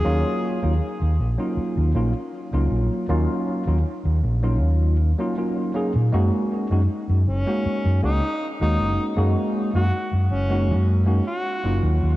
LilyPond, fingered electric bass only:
\new Staff \with { instrumentName = "Fingered electric bass" } { \clef bass \time 4/4 \key fis \major \tempo 4 = 79 dis,16 r8 dis,16 r16 dis,16 ais,,16 r8 dis,16 ais,,16 r8 cis,16 ais,,16 r16 | dis,16 r8 dis,16 r16 dis,16 ais,,8 dis,8. r4 ais,16 | fis,16 r8 fis,16 r16 fis,16 fis,,16 r8 fis,16 cis,16 r8 dis,16 fis,,16 r16 | fis,16 r8 fis,16 r16 fis,16 fis,,8 fis,8. r8 fis,,16 dis,16 dis,16 | }